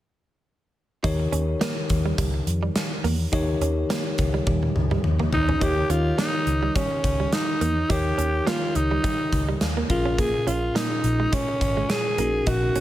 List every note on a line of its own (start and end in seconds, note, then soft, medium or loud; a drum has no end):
1.03 1.25 D#2 loud
1.03 1.86 D#3 medium
1.03 3.28 D#4 medium
1.03 1.15 D#4 medium
1.03 3.28 G4 medium
1.03 3.29 A#4 medium
1.03 3.29 C#5 medium
1.03 kick medium
1.03 closed hi-hat medium
1.20 muted clean electric guitar stroke soft
1.32 1.54 D#2 medium
1.32 1.44 C#4 medium
1.32 closed hi-hat medium
1.61 1.72 A#3 medium
1.61 snare loud
1.61 closed hi-hat medium
1.77 muted clean electric guitar stroke soft
1.90 2.11 D#2 medium
1.90 kick medium
1.90 closed hi-hat medium
2.06 2.15 G3 medium
2.18 2.40 C#2 medium
2.18 2.30 G3 medium
2.18 kick medium
2.18 closed hi-hat medium
2.34 muted clean electric guitar stroke soft
2.47 2.68 F2 medium
2.47 closed hi-hat medium
2.63 2.72 G3 medium
2.76 snare loud
2.76 closed hi-hat medium
3.04 3.25 E2 medium
3.04 3.16 A#3 medium
3.04 open hi-hat medium
3.32 3.54 D#2 loud
3.32 4.14 D#3 medium
3.32 5.28 D#4 medium
3.32 3.44 D#4 medium
3.32 5.29 G4 medium
3.32 5.29 A#4 medium
3.32 5.29 C#5 medium
3.32 kick medium
3.32 closed hi-hat medium
3.49 muted clean electric guitar stroke soft
3.61 3.82 D#2 medium
3.61 3.73 C#4 medium
3.61 closed hi-hat medium
3.90 4.02 A#3 medium
3.90 snare loud
3.90 closed hi-hat medium
4.06 muted clean electric guitar stroke soft
4.18 4.40 C#2 medium
4.18 kick medium
4.18 closed hi-hat medium
4.34 4.43 G3 medium
4.47 4.68 D#2 medium
4.47 4.59 G3 medium
4.47 kick loud
4.47 high tom medium
4.63 muted clean electric guitar stroke soft
4.63 high tom soft
4.75 4.97 C#2 medium
4.75 mid tom medium
4.91 5.01 G3 medium
4.91 mid tom medium
5.04 5.25 D#2 medium
5.04 mid tom medium
5.19 5.29 A#3 medium
5.19 mid tom medium
5.32 5.54 D#2 medium
5.32 5.64 D#4 medium
5.32 muted clean electric guitar stroke soft
5.32 floor tom medium
5.49 5.58 C#4 medium
5.49 floor tom medium
5.60 5.83 D#2 medium
5.60 6.43 D#3 medium
5.60 7.85 D#4 medium
5.60 5.73 D#4 medium
5.60 7.85 G4 medium
5.60 5.92 G4 loud
5.60 7.86 A#4 medium
5.60 7.86 C#5 medium
5.60 kick loud
5.60 closed hi-hat medium
5.77 muted clean electric guitar stroke soft
5.90 6.11 D#2 loud
5.90 6.01 C#4 medium
5.90 6.19 F4 medium
5.90 closed hi-hat medium
6.18 6.30 A#3 medium
6.18 6.77 D#4 medium
6.18 snare medium
6.18 closed hi-hat medium
6.34 muted clean electric guitar stroke soft
6.47 6.68 C#2 medium
6.47 closed hi-hat medium
6.63 6.72 G3 medium
6.76 6.87 G3 medium
6.76 7.35 C#4 medium
6.76 kick medium
6.76 closed hi-hat medium
6.91 muted clean electric guitar stroke soft
7.04 7.25 C#2 medium
7.04 kick medium
7.04 closed hi-hat medium
7.20 7.29 G3 medium
7.33 7.92 D#4 medium
7.33 snare medium
7.33 closed hi-hat medium
7.61 7.83 E2 medium
7.61 7.73 A#3 medium
7.61 closed hi-hat medium
7.89 8.11 D#2 medium
7.89 8.72 D#3 medium
7.89 9.86 D#4 medium
7.89 8.01 D#4 medium
7.89 8.49 G4 loud
7.89 9.86 G4 medium
7.89 9.86 A#4 medium
7.89 9.87 C#5 medium
7.89 kick medium
7.89 closed hi-hat medium
8.05 muted clean electric guitar stroke soft
8.18 8.40 D#2 loud
8.18 8.30 C#4 medium
8.18 closed hi-hat medium
8.47 8.58 A#3 medium
8.47 8.77 F4 medium
8.47 snare loud
8.47 closed hi-hat medium
8.62 muted clean electric guitar stroke soft
8.75 8.97 C#2 medium
8.75 9.63 D#4 medium
8.75 closed hi-hat medium
8.91 9.01 G3 medium
9.04 9.15 G3 medium
9.04 kick loud
9.04 closed hi-hat medium
9.20 muted clean electric guitar stroke soft
9.33 9.54 C#2 medium
9.33 kick medium
9.33 closed hi-hat medium
9.49 9.58 G3 medium
9.61 9.83 D#2 medium
9.61 snare loud
9.61 closed hi-hat medium
9.77 9.86 A#3 medium
9.89 10.33 A#1 medium
9.89 10.72 A#2 medium
9.89 12.14 C#4 medium
9.89 12.14 F4 medium
9.89 10.21 F4 medium
9.89 12.15 G#4 medium
9.89 12.15 A#4 medium
9.89 muted clean electric guitar stroke soft
9.89 kick medium
9.89 closed hi-hat medium
10.05 10.15 C#4 medium
10.18 10.30 A#3 medium
10.18 10.49 G#4 loud
10.18 kick medium
10.18 closed hi-hat medium
10.34 muted clean electric guitar stroke soft
10.47 10.68 A#1 medium
10.47 10.58 C#4 medium
10.47 10.78 F4 medium
10.47 closed hi-hat medium
10.75 10.87 A#3 medium
10.75 11.35 D#4 medium
10.75 snare loud
10.75 closed hi-hat medium
10.91 muted clean electric guitar stroke soft
11.04 11.25 A#1 medium
11.04 closed hi-hat medium
11.20 11.29 G#3 medium
11.32 11.44 G#3 medium
11.32 11.92 C#4 medium
11.32 kick medium
11.32 closed hi-hat medium
11.48 muted clean electric guitar stroke soft
11.61 11.82 G#1 medium
11.61 kick medium
11.61 closed hi-hat medium
11.77 11.86 G#3 medium
11.90 12.49 G#4 loud
11.90 snare medium
11.90 closed hi-hat medium
12.18 12.40 A#1 medium
12.18 12.80 A#2 medium
12.18 12.30 A#3 medium
12.18 12.80 C#4 medium
12.18 12.80 D#4 medium
12.18 12.80 F#4 medium
12.18 12.80 A#4 medium
12.18 closed hi-hat medium
12.47 12.68 A#1 medium
12.47 12.58 D#4 medium
12.47 12.80 F#4 medium
12.47 kick medium
12.47 closed hi-hat medium
12.63 muted clean electric guitar stroke soft
12.75 12.80 A#1 medium
12.75 12.80 C#4 medium
12.75 closed hi-hat medium